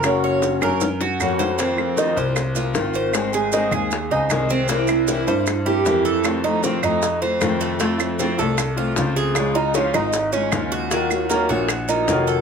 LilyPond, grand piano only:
\new Staff \with { instrumentName = "Grand piano" } { \clef bass \time 4/4 \key f \phrygian \tempo 4 = 154 ges,,4. ges,4. f,4~ | f,4. c,4. aes,,4~ | aes,,4. ees,4 des,8 c,4~ | c,4. g,4. f,4~ |
f,4. f,4. f,4~ | f,4. c,4. des,4~ | des,4. aes,,4. ees,4~ | ees,4. bes,,4. f,,4 | }